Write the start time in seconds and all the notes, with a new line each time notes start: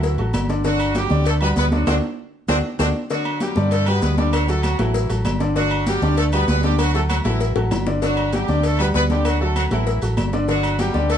Already playing: D2 E3 F#3 E4 F#4 A4
0.03 cowbell, high conga, maracas
0.18 A1 F#3 F#4 A4, high conga, low agogo
0.33 G1, cowbell, high conga, low timbale, low agogo, claves, maracas
0.49 D3 D4 D5, cowbell, high conga, maracas
0.64 D3 F#3 D4 F#4 D5, cowbell, high conga, maracas
0.80 high conga, low agogo, claves, maracas
0.95 F#3 G3 F#4 G4, cowbell, high conga, low timbale, low agogo, maracas
1.10 D2 D3 D4 D5, high conga, maracas
1.25 A3 A4, cowbell, high conga, low agogo, maracas
1.41 G3 B3 F#4 G4 B4, high conga, low agogo, claves
1.56 D2 B3 B4, cowbell, high conga, low timbale, maracas
1.72 D3 F#3 D4 F#4 D5, cowbell, high conga, maracas
1.87 D2 C4 D4 F#4 A4, cowbell, high conga, high timbale, claves, maracas
2.48 D2 C4 D4 F#4 A4, cowbell, high conga, high timbale, claves, maracas
2.79 D2 C4 D4 F#4 A4, cowbell, high conga, high timbale, claves, maracas
3.10 D3 F#3 D4 F#4 D5, cowbell, high conga, maracas
3.25 high conga, low agogo, claves
3.40 F#3 G3 F#4 G4, cowbell, high conga, low timbale, low agogo, maracas
3.56 G2 D3 D4 D5, high conga, maracas
3.71 A3 A4, cowbell, high conga, low agogo, maracas
3.86 G3 B3 F#4 G4 B4, high conga, low agogo, claves, maracas
4.02 D2 B3 B4, cowbell, high conga, low timbale, maracas
4.17 D3 G3 D4 G4 D5, cowbell, high conga, maracas
4.32 F#3 F#4, cowbell, high conga, low agogo, claves, maracas
4.48 F#3 A3 F#4 A4, high conga, maracas
4.63 F#3 F#4, cowbell, high conga, low timbale, low agogo, claves, maracas
4.79 A1 E3 F#3 E4 F#4 A4, cowbell, high conga, low agogo, maracas
4.94 cowbell, high conga, maracas
5.09 A1 F#3 F#4 A4, high conga, low agogo, maracas
5.25 G1, cowbell, high conga, low timbale, low agogo, claves, maracas
5.40 D3 D4 D5, cowbell, high conga, maracas
5.55 D3 F#3 D4 F#4 D5, cowbell, high conga, maracas
5.71 high conga, low agogo, claves
5.87 F#3 G3 F#4 G4, cowbell, high conga, low timbale, low agogo, maracas
6.02 D2 D3 D4 D5, high conga, maracas
6.17 A3 A4, cowbell, high conga, low agogo, maracas
6.32 G3 B3 F#4 G4 B4, high conga, low agogo, claves, maracas
6.48 D2 B3 B4, cowbell, high conga, low timbale, maracas
6.63 D3 G3 D4 G4 D5, cowbell, high conga, maracas
6.78 F#3 F#4, cowbell, high conga, low agogo, claves, maracas
6.94 F#3 A3 F#4 A4, high conga, maracas
7.09 F#3 F#4, cowbell, high conga, low timbale, low agogo, claves, maracas
7.24 A1 E3 F#3 E4 F#4 A4, cowbell, high conga, low agogo, maracas
7.40 cowbell, high conga, maracas
7.56 A1 F#3 F#4 A4, high bongo, high conga, low agogo
7.71 G1, cowbell, low bongo, high conga, low timbale, low agogo, claves, maracas
7.87 D3 D4 D5, cowbell, low bongo, high conga, maracas
8.02 D3 F#3 D4 F#4 D5, cowbell, high conga, maracas
8.17 high conga, low agogo, claves
8.33 F#3 G3 F#4 G4, cowbell, high conga, low timbale, low agogo, maracas
8.48 D2 D3 D4 D5, high conga, maracas
8.63 A3 A4, cowbell, high conga, low agogo, maracas
8.79 G3 B3 F#4 G4 B4, high conga, low agogo, claves, maracas
8.94 D2 B3 B4, cowbell, high conga, low timbale, maracas
9.10 D3 G3 D4 G4 D5, cowbell, high conga, maracas
9.25 F#3 F#4, cowbell, high conga, low agogo, claves, maracas
9.40 F#3 A3 F#4 A4, high conga
9.56 F#3 F#4, cowbell, high conga, low timbale, low agogo, claves, maracas
9.71 A1 E3 F#3 E4 F#4 A4, cowbell, high conga, low agogo, maracas
9.87 cowbell, high conga, maracas
10.02 A1 F#3 F#4 A4, low agogo, maracas
10.17 G1, cowbell, high conga, low timbale, low agogo, claves, maracas
10.33 D3 D4 D5, cowbell, high conga, maracas
10.48 D3 F#3 D4 F#4 D5, cowbell, maracas
10.63 high conga, low agogo, claves, maracas
10.79 F#3 G3 F#4 G4, cowbell, high conga, low timbale, low agogo, maracas
10.94 D2 D3 D4 D5, high conga, maracas
11.10 A3 A4, cowbell, high conga, low agogo, maracas